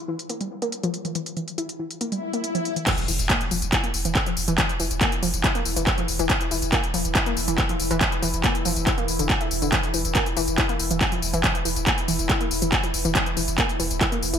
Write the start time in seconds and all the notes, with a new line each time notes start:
0.08 E3
0.19 closed hi-hat
0.29 A#3, closed hi-hat
0.41 G3, closed hi-hat
0.62 A#3, closed hi-hat
0.72 closed hi-hat
0.83 F3, closed hi-hat
0.94 closed hi-hat
1.05 E3, closed hi-hat
1.15 E3, closed hi-hat
1.26 closed hi-hat
1.37 E3, closed hi-hat
1.48 closed hi-hat
1.58 E4, closed hi-hat
1.69 closed hi-hat
1.79 E3
1.91 closed hi-hat
2.01 A#3, closed hi-hat, swell
2.12 G3, closed hi-hat
2.33 A#3, closed hi-hat
2.44 closed hi-hat
2.55 F3, closed hi-hat
2.65 closed hi-hat
2.76 E3, closed hi-hat
2.87 E3 E4, kick, clap, closed hi-hat, crash, tambourine, impact
2.98 closed hi-hat
3.08 E1 E3, open hi-hat, tambourine
3.19 E1, closed hi-hat, tambourine
3.30 A#3, kick, clap, closed hi-hat
3.41 closed hi-hat
3.51 E1 F3, open hi-hat, tambourine
3.62 E1, closed hi-hat, tambourine
3.73 E4, kick, clap, closed hi-hat, tambourine
3.84 A#3, closed hi-hat
3.94 E1, open hi-hat, tambourine
4.05 E1 E3, closed hi-hat, tambourine
4.15 kick, clap, closed hi-hat, tambourine
4.26 F3, closed hi-hat
4.37 E1, open hi-hat, tambourine
4.48 E1 E3, closed hi-hat, tambourine
4.58 E3, kick, clap, closed hi-hat, tambourine
4.69 closed hi-hat
4.80 E1 E3, open hi-hat, tambourine
4.91 E1, closed hi-hat, tambourine
5.01 A#3, kick, clap, closed hi-hat, tambourine
5.12 closed hi-hat
5.22 E1 F3, open hi-hat, tambourine
5.34 E1, closed hi-hat, tambourine
5.44 E4, kick, clap, closed hi-hat, tambourine
5.55 A#3, closed hi-hat
5.65 E1, open hi-hat, tambourine
5.76 E1 E3, closed hi-hat, tambourine
5.87 kick, clap, closed hi-hat, tambourine
5.98 F3, closed hi-hat
6.08 E1, open hi-hat, tambourine
6.19 E1 E3, closed hi-hat, tambourine
6.30 E3, kick, clap, closed hi-hat, tambourine
6.41 closed hi-hat
6.51 E1 E3, open hi-hat, tambourine
6.62 E1, closed hi-hat, tambourine
6.72 A#3, kick, clap, closed hi-hat, tambourine
6.84 closed hi-hat
6.94 E1 F3, open hi-hat, tambourine
7.05 E1, closed hi-hat, tambourine
7.15 E4, kick, clap, closed hi-hat, tambourine
7.26 A#3, closed hi-hat
7.37 E1, open hi-hat, tambourine
7.48 E1 E3, closed hi-hat, tambourine
7.58 kick, clap, closed hi-hat, tambourine
7.69 F3, closed hi-hat
7.79 E1, open hi-hat, tambourine
7.91 E1 E3, closed hi-hat, tambourine
8.01 E3, kick, clap, closed hi-hat, tambourine
8.12 closed hi-hat
8.22 E1 E3, open hi-hat, tambourine
8.33 E1, closed hi-hat, tambourine
8.44 A#3, kick, clap, closed hi-hat, tambourine
8.55 closed hi-hat
8.65 E1 F3, open hi-hat, tambourine
8.76 E1, closed hi-hat, tambourine
8.87 E4, kick, clap, closed hi-hat, tambourine
8.98 A#3, closed hi-hat
9.08 E1, open hi-hat, tambourine
9.19 E1 D3, closed hi-hat, tambourine
9.30 kick, clap, closed hi-hat, tambourine
9.41 E4, closed hi-hat
9.51 E1, open hi-hat, tambourine
9.62 E1 D3, closed hi-hat, tambourine
9.72 E3, kick, clap, closed hi-hat, tambourine
9.83 closed hi-hat
9.94 E1 E3, open hi-hat, tambourine
10.05 E1, closed hi-hat, tambourine
10.15 A#3, kick, clap, closed hi-hat, tambourine
10.26 closed hi-hat
10.37 E1 E3, open hi-hat, tambourine
10.48 E1, closed hi-hat, tambourine
10.58 E4, kick, clap, closed hi-hat, tambourine
10.69 A#3, closed hi-hat
10.79 E1, open hi-hat, tambourine
10.91 E1 E3, closed hi-hat, tambourine
11.01 kick, clap, closed hi-hat, tambourine
11.12 F3, closed hi-hat
11.22 E1, open hi-hat, tambourine
11.33 E1 E3, closed hi-hat, tambourine
11.44 E3, kick, clap, closed hi-hat, tambourine
11.55 closed hi-hat
11.65 E1 E3, open hi-hat, tambourine
11.76 E1, closed hi-hat, tambourine
11.87 A#3, kick, clap, closed hi-hat
11.98 closed hi-hat
12.08 E1 E3, open hi-hat, tambourine
12.19 E1, closed hi-hat, tambourine
12.30 E4, kick, clap, closed hi-hat, tambourine
12.41 A#3, closed hi-hat
12.51 E1, open hi-hat, tambourine
12.62 E1 E3, closed hi-hat, tambourine
12.72 kick, clap, closed hi-hat, tambourine
12.84 F3, closed hi-hat
12.94 E1, open hi-hat, tambourine
13.05 E1 E3, closed hi-hat, tambourine
13.15 E3, kick, clap, closed hi-hat, tambourine
13.26 closed hi-hat
13.37 E1 E3, open hi-hat, tambourine
13.48 E1, closed hi-hat, tambourine
13.58 A#3, kick, clap, closed hi-hat, tambourine
13.69 closed hi-hat
13.79 E1 E3, open hi-hat, tambourine
13.91 E1, closed hi-hat, tambourine
14.01 E4, kick, clap, closed hi-hat, tambourine
14.12 A#3, closed hi-hat
14.22 E1, open hi-hat, tambourine
14.34 E1 E3, closed hi-hat, tambourine